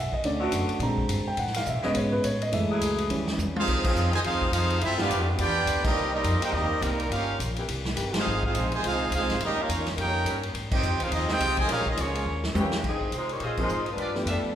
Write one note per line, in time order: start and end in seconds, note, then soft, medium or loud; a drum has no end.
0.00 0.11 B1 medium
0.00 0.13 E5 medium
0.12 0.24 D#5 medium
0.12 muted upright bass stroke soft
0.12 kick medium
0.23 0.51 D2 medium
0.23 0.79 D3 medium
0.23 0.79 A3 soft
0.23 0.79 C#4 medium
0.23 0.41 D5 medium
0.23 ride medium
0.40 0.78 D3 loud
0.40 0.78 A3 loud
0.40 0.78 B3 loud
0.40 0.78 F#4 loud
0.40 0.49 F#4 medium
0.52 0.68 F#2 loud
0.52 hi-hat pedal medium
0.52 ride medium
0.68 muted upright bass stroke soft
0.68 ride medium
0.79 1.08 A#2 loud
0.79 1.25 D3 soft
0.79 1.25 G#3 soft
0.79 1.25 C4 medium
0.79 1.25 A#5 medium
0.79 ride medium
0.97 kick medium
1.09 1.25 G2 medium
1.09 hi-hat pedal medium
1.09 ride medium
1.26 1.38 G5 medium
1.26 muted upright bass stroke soft
1.37 1.65 A2 medium
1.37 1.55 F#5 medium
1.37 ride medium
1.47 snare soft
1.54 1.67 F5 medium
1.54 snare medium
1.54 ride medium
1.65 1.75 B2 medium
1.65 1.85 E5 medium
1.65 hi-hat pedal medium
1.75 1.85 A2 medium
1.82 1.95 G#2 medium
1.82 1.91 C#3 loud
1.82 2.22 C#3 medium
1.82 2.22 G#3 medium
1.82 1.91 A3 medium
1.82 1.92 B3 medium
1.82 2.23 B3 medium
1.82 1.91 G#4 loud
1.82 1.96 D#5 medium
1.82 snare soft
1.95 2.24 G#2 loud
1.95 2.13 C#5 medium
1.95 ride medium
2.12 2.24 B4 medium
2.24 2.51 A2 medium
2.24 2.41 C#5 medium
2.24 hi-hat pedal medium
2.24 ride medium
2.42 2.53 D#5 medium
2.42 ride medium
2.52 2.68 F#2 medium
2.52 3.07 E3 medium
2.52 3.07 G#3 soft
2.52 3.07 A3 medium
2.52 2.80 E5 medium
2.52 ride medium
2.69 3.08 F#3 loud
2.69 3.09 E4 loud
2.69 3.08 G#4 loud
2.69 muted upright bass stroke soft
2.80 3.08 C#2 medium
2.80 hi-hat pedal medium
2.80 ride medium
2.98 ride medium
3.10 3.37 D#2 loud
3.10 3.53 E3 soft
3.10 3.53 G3 soft
3.10 3.54 C#4 medium
3.10 ride medium
3.27 snare medium
3.38 3.66 E2 medium
3.38 hi-hat pedal medium
3.38 high tom medium
3.56 3.83 F3 medium
3.56 3.83 C4 loud
3.56 3.84 D#4 loud
3.56 3.83 F4 medium
3.56 3.84 G#4 loud
3.56 3.84 C5 loud
3.56 3.84 F5 loud
3.56 high tom medium
3.67 3.94 C2 medium
3.67 kick medium
3.67 crash medium
3.84 4.22 F3 loud
3.84 4.11 F3 loud
3.84 4.22 C4 medium
3.84 4.12 C4 loud
3.84 4.22 D#4 loud
3.84 4.12 D#4 medium
3.84 4.12 F4 loud
3.84 4.23 G#4 loud
3.84 4.12 G#4 medium
3.84 4.13 C5 medium
3.84 4.13 F5 loud
3.84 kick loud
3.84 crash medium
3.95 4.23 F2 loud
3.95 hi-hat pedal medium
4.12 4.18 D#3 medium
4.12 4.18 F3 medium
4.12 4.17 G#3 medium
4.12 4.20 F4 medium
4.12 4.20 C5 medium
4.12 4.20 D#5 loud
4.12 4.20 G#5 loud
4.12 ride medium
4.23 4.51 D#2 medium
4.23 4.50 F3 medium
4.23 4.50 C4 loud
4.23 4.52 D#4 loud
4.23 4.50 F4 loud
4.23 4.52 G#4 medium
4.23 4.52 C5 medium
4.23 4.52 F5 loud
4.23 ride medium
4.42 kick medium
4.52 4.80 F2 loud
4.52 4.79 F3 medium
4.52 4.79 C4 medium
4.52 4.80 D#4 medium
4.52 4.79 F4 medium
4.52 4.80 G#4 loud
4.52 4.80 C5 medium
4.52 4.80 F5 loud
4.52 hi-hat pedal medium
4.52 ride medium
4.70 ride medium
4.81 5.09 G2 medium
4.81 4.98 C4 loud
4.81 4.97 E4 loud
4.81 4.98 F4 loud
4.81 4.99 A4 loud
4.81 4.99 E5 loud
4.81 ride medium
4.96 5.37 F3 loud
4.96 5.24 B3 loud
4.96 5.37 B3 loud
4.96 5.24 D4 loud
4.96 5.37 D4 loud
4.96 5.26 D4 medium
4.96 5.25 F4 loud
4.96 5.37 G4 loud
4.96 snare medium
5.01 5.27 G4 medium
5.01 5.27 B4 medium
5.01 5.27 F5 loud
5.10 5.38 F2 loud
5.10 hi-hat pedal medium
5.10 ride medium
5.35 5.65 E2 loud
5.35 5.80 B3 loud
5.35 5.80 D4 loud
5.35 5.80 G4 medium
5.35 5.82 D5 loud
5.35 ride medium
5.40 5.82 F4 loud
5.40 5.82 B4 loud
5.40 5.83 G5 loud
5.66 5.95 D2 medium
5.66 hi-hat pedal medium
5.66 ride medium
5.81 6.10 G3 medium
5.81 6.10 A#3 medium
5.81 6.10 D#4 loud
5.81 6.12 A#4 medium
5.81 kick loud
5.81 crash medium
5.86 6.12 C4 medium
5.86 6.12 G4 medium
5.86 6.12 D#5 loud
5.96 6.23 C2 medium
6.12 6.39 G3 medium
6.12 6.40 A#3 medium
6.12 6.40 C4 medium
6.12 6.39 D#4 loud
6.12 6.41 G4 medium
6.12 6.40 A#4 medium
6.12 6.40 D#5 loud
6.24 6.40 F2 loud
6.24 hi-hat pedal medium
6.24 ride medium
6.41 6.53 A#3 medium
6.41 6.52 D#4 medium
6.41 6.54 D#4 medium
6.41 6.53 G4 medium
6.41 6.52 A#4 medium
6.41 6.55 C5 medium
6.41 6.54 G5 loud
6.41 muted upright bass stroke soft
6.41 ride medium
6.52 6.81 D#2 loud
6.52 6.81 D#3 medium
6.52 6.80 G3 medium
6.52 6.81 A#3 medium
6.52 6.80 A#3 loud
6.52 6.82 C4 medium
6.52 6.80 C4 medium
6.52 6.82 D#4 medium
6.52 6.82 G4 medium
6.52 6.82 A#4 medium
6.52 6.82 D#5 loud
6.81 7.09 C2 medium
6.81 7.10 D#3 medium
6.81 6.94 D#3 loud
6.81 7.10 G3 medium
6.81 7.11 G3 medium
6.81 7.09 A#3 medium
6.81 6.94 A#3 medium
6.81 6.93 C4 medium
6.81 7.11 C4 medium
6.81 7.11 D#4 medium
6.81 6.93 A#4 loud
6.81 7.11 A#4 loud
6.81 hi-hat pedal medium
6.81 ride medium
7.00 ride medium
7.10 7.38 G1 medium
7.10 7.37 A#3 medium
7.10 7.38 C#4 medium
7.10 7.39 C#4 medium
7.10 7.37 F4 medium
7.10 7.38 G4 medium
7.10 7.38 A#4 medium
7.10 7.38 F5 medium
7.10 ride medium
7.39 7.67 A#1 medium
7.39 hi-hat pedal medium
7.39 ride medium
7.56 7.66 E3 medium
7.56 7.65 A#3 medium
7.56 7.65 C4 medium
7.56 7.65 G4 loud
7.56 ride medium
7.68 7.96 C2 loud
7.68 ride medium
7.85 snare medium
7.96 8.25 G1 medium
7.96 8.25 E3 medium
7.96 8.25 A#3 medium
7.96 8.26 C4 medium
7.96 8.25 G4 loud
7.96 hi-hat pedal medium
7.96 ride medium
8.14 8.41 G#3 medium
8.14 8.41 C4 medium
8.14 8.42 D#4 medium
8.14 8.41 F4 medium
8.14 8.43 G#4 medium
8.14 8.42 C5 medium
8.14 8.43 F5 loud
8.14 snare loud
8.14 ride medium
8.26 8.53 G#1 medium
8.43 8.71 G#3 medium
8.43 8.71 C4 loud
8.43 8.71 D#4 medium
8.43 8.71 F4 loud
8.43 8.71 G#4 medium
8.43 8.71 C5 medium
8.43 8.71 F5 loud
8.43 kick medium
8.54 8.82 A#1 loud
8.54 hi-hat pedal medium
8.54 ride medium
8.72 8.84 C3 medium
8.72 8.84 D#3 medium
8.72 8.83 G#3 medium
8.72 8.85 F4 loud
8.72 8.84 C5 medium
8.72 8.84 D#5 medium
8.72 8.85 G#5 loud
8.72 ride medium
8.82 9.10 C2 medium
8.82 9.10 G#3 loud
8.82 9.11 C4 loud
8.82 9.10 F4 medium
8.82 ride medium
8.86 9.12 D#4 medium
8.86 9.11 G#4 medium
8.86 9.12 C5 medium
8.86 9.11 F5 loud
9.10 9.22 C#2 medium
9.10 hi-hat pedal medium
9.10 ride medium
9.15 9.40 G#3 medium
9.15 9.40 C4 medium
9.15 9.40 D#4 loud
9.15 9.40 F4 medium
9.15 9.40 G#4 medium
9.15 9.40 C5 medium
9.15 9.40 F5 loud
9.22 9.30 C2 medium
9.30 9.40 G#1 medium
9.30 snare soft
9.30 ride medium
9.40 9.68 D#2 medium
9.40 9.58 G3 medium
9.40 9.58 A#3 medium
9.40 9.59 C#4 medium
9.40 9.58 D#4 medium
9.40 9.59 G4 medium
9.40 9.59 A#4 medium
9.40 9.59 D#5 medium
9.40 ride medium
9.61 9.88 A#3 medium
9.61 9.88 C#4 medium
9.61 9.88 D#4 medium
9.61 9.88 F4 medium
9.61 9.88 A#4 medium
9.61 9.88 C#5 medium
9.61 9.88 F5 loud
9.69 9.96 E2 loud
9.69 hi-hat pedal medium
9.69 ride medium
9.87 snare soft
9.87 ride medium
9.95 10.24 F2 loud
9.95 10.24 G3 medium
9.95 10.24 C#4 medium
9.95 10.24 D#4 medium
9.95 10.24 A#4 loud
9.95 ride medium
10.00 10.41 A#3 medium
10.00 10.41 C#4 medium
10.00 10.42 D#4 medium
10.00 10.41 G4 medium
10.00 10.42 A#4 medium
10.00 10.42 C#5 medium
10.00 10.42 G5 loud
10.24 10.53 G2 medium
10.24 10.37 G3 medium
10.24 10.37 C#4 medium
10.24 10.37 D#4 medium
10.24 10.37 A#4 medium
10.24 hi-hat pedal medium
10.24 ride medium
10.43 ride medium
10.54 10.82 G#2 medium
10.54 ride medium
10.71 10.98 C4 medium
10.71 10.98 D#4 medium
10.71 11.00 F4 medium
10.71 10.98 G4 medium
10.71 11.00 G5 loud
10.71 kick loud
10.71 crash medium
10.75 11.00 C5 medium
10.75 11.00 D#5 medium
10.83 10.93 F2 loud
10.83 hi-hat pedal medium
10.93 11.00 D#2 medium
11.00 11.11 C2 medium
11.00 11.10 F3 medium
11.00 11.10 C4 medium
11.00 11.13 D#4 medium
11.00 11.12 F4 medium
11.00 11.12 G#4 medium
11.00 11.13 C5 medium
11.00 11.13 F5 medium
11.00 ride medium
11.11 11.39 D#2 medium
11.11 11.28 F3 medium
11.11 11.28 C4 medium
11.11 11.29 C4 medium
11.11 11.28 D#4 medium
11.11 11.28 F4 medium
11.11 11.28 G#4 medium
11.11 11.28 D#5 loud
11.11 ride medium
11.28 11.65 F3 loud
11.28 11.67 C4 medium
11.28 11.58 C4 medium
11.28 11.67 D#4 medium
11.28 11.58 D#4 medium
11.28 11.59 F4 loud
11.28 11.58 G4 medium
11.28 11.66 G#4 loud
11.28 11.58 C5 loud
11.28 11.58 D#5 loud
11.28 11.59 G5 loud
11.28 snare medium
11.40 11.68 C2 loud
11.40 hi-hat pedal medium
11.40 ride medium
11.57 11.70 D#3 medium
11.57 11.70 F3 medium
11.57 11.69 G#3 medium
11.57 11.70 F4 medium
11.57 11.69 C5 loud
11.57 11.69 D#5 medium
11.57 11.69 G#5 loud
11.57 kick medium
11.57 ride medium
11.67 11.97 A#1 medium
11.67 11.79 F3 loud
11.67 11.87 G#3 loud
11.67 11.80 A#3 medium
11.67 11.79 C#4 loud
11.67 11.87 C#4 loud
11.67 11.87 F4 loud
11.67 11.80 G#4 loud
11.67 snare soft
11.67 ride medium
11.72 11.88 C#4 loud
11.72 11.88 G#4 medium
11.72 11.88 A#4 loud
11.72 11.88 F5 loud
11.86 11.99 C4 medium
11.86 11.97 D#4 medium
11.86 11.99 F4 medium
11.86 11.98 G#4 medium
11.86 11.98 D#5 medium
11.86 kick medium
11.97 12.24 C#2 loud
11.97 12.27 F3 medium
11.97 12.26 G#3 medium
11.97 12.44 A#3 medium
11.97 12.44 C#4 medium
11.97 12.28 F4 medium
11.97 12.28 G#4 medium
11.97 12.45 C#5 medium
11.97 hi-hat pedal medium
11.97 ride medium
12.15 ride medium
12.25 12.54 D#2 loud
12.44 snare medium
12.53 12.83 E2 loud
12.53 12.66 E3 medium
12.53 12.66 C#4 medium
12.53 12.66 D#4 medium
12.53 12.66 G4 loud
12.53 hi-hat pedal medium
12.53 high tom loud
12.60 12.85 E3 medium
12.60 12.84 A#3 medium
12.60 12.84 C#4 medium
12.60 12.85 G4 medium
12.72 snare medium
12.83 13.11 G#2 medium
12.83 kick medium
12.83 crash medium
12.88 13.13 F3 medium
12.88 13.12 C4 medium
12.88 13.13 D#4 medium
12.88 13.13 G#4 medium
13.01 kick medium
13.12 13.39 C3 medium
13.12 hi-hat pedal medium
13.12 ride medium
13.17 13.31 G#3 medium
13.17 13.31 D#4 medium
13.17 13.31 F4 medium
13.17 13.31 C5 medium
13.29 13.43 D#4 medium
13.29 13.43 G4 medium
13.29 13.43 C#5 medium
13.29 ride soft
13.33 13.43 A#3 medium
13.40 13.68 A#2 medium
13.40 13.84 F4 medium
13.40 13.84 G#4 medium
13.40 13.84 C5 medium
13.40 13.84 D#5 medium
13.40 ride medium
13.45 13.59 C4 medium
13.45 13.59 F4 medium
13.45 13.59 G#4 medium
13.45 13.59 D#5 medium
13.57 13.69 F3 medium
13.57 13.69 A#3 medium
13.57 13.69 C4 medium
13.57 13.69 D#4 medium
13.57 13.69 G#4 medium
13.57 kick medium
13.57 crash medium
13.62 13.87 G#3 medium
13.62 13.87 D#4 medium
13.62 13.87 F4 medium
13.62 13.87 C5 medium
13.69 13.96 G#2 medium
13.69 hi-hat pedal medium
13.86 ride soft
13.91 14.18 G3 medium
13.91 14.18 D4 medium
13.91 14.18 F4 medium
13.91 14.18 B4 medium
13.97 14.25 G2 medium
13.97 14.10 F4 medium
13.97 14.10 G4 medium
13.97 14.10 B4 medium
13.97 14.10 D5 loud
13.97 ride medium
14.15 14.54 F3 medium
14.15 14.54 A3 medium
14.15 14.54 B3 medium
14.15 14.54 D4 medium
14.15 14.54 G4 medium
14.15 snare soft
14.25 14.42 F2 medium
14.25 14.39 F4 medium
14.25 14.39 G4 medium
14.25 14.39 B4 medium
14.25 14.39 E5 medium
14.25 hi-hat pedal medium
14.25 ride medium
14.31 14.55 G3 medium
14.31 14.55 D4 medium
14.31 14.55 F4 medium
14.31 14.55 A4 medium
14.43 muted upright bass stroke soft